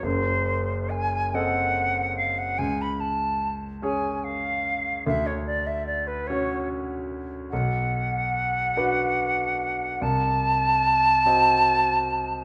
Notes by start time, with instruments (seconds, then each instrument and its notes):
0.03 grand piano F#1 F#2, flute C5
0.90 flute G#5
1.34 grand piano C4 A4 D#5, flute F#5
2.17 flute F5
2.38 flute F#5
2.58 grand piano C#2, flute G#5
2.82 flute B5
3.00 flute A5
3.82 grand piano C#4 G#4 C#5, flute G#5
4.24 flute F5
5.06 grand piano D2, flute E5
5.26 flute C#5
5.46 flute D5
5.67 flute E5
5.86 flute D5
6.07 flute B4
6.27 grand piano C#4 F#4 C#5, flute C#5
7.50 grand piano B1, flute F#5
8.77 grand piano D4 F#4 B4
10.01 grand piano C2, flute A5
11.26 grand piano C4 F#4 D#5